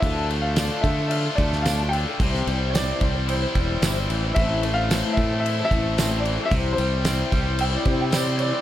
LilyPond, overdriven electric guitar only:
\new Staff \with { instrumentName = "Overdriven electric guitar" } { \time 4/4 \key c \mixolydian \tempo 4 = 111 d8 a8 d'8 a8 f'8 a8 d'8 d8 | c8 g8 c'8 g8 e'8 g8 c'8 e8 | a,8 a8 c'8 a8 e'8 a8 c'8 e8 | c8 g8 c'8 g8 e'8 g8 c'8 e8 | }